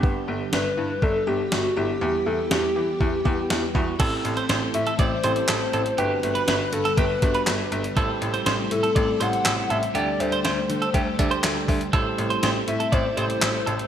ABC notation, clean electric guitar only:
X:1
M:4/4
L:1/16
Q:1/4=121
K:Ador
V:1 name="Clean electric guitar"
z16 | z16 | A2 z c c z2 A d2 c z A z A z | G2 z B B z2 A G z2 B z4 |
A2 z c c z2 A d2 c z A z A z | G2 z c c z2 A G z2 c z4 | A2 z c c z2 A d2 c z A z A z |]